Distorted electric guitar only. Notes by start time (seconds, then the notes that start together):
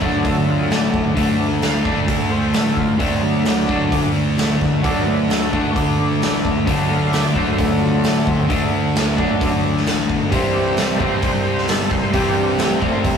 0.01 D3 A3 D4
1.15 D3 A3 D4
1.84 D3 A3 D4
2.98 D3 A3 D4
3.67 D3 A3 D4
4.83 D3 A3 D4
5.53 D3 A3 D4
6.66 D3 A3 D4
7.35 D3 A3 D4
8.48 D3 A3 D4
9.17 D3 A3 D4
10.31 C3 G3 C4
10.99 C3 G3 C4
12.13 C3 G3 C4
12.81 C3 G3 C4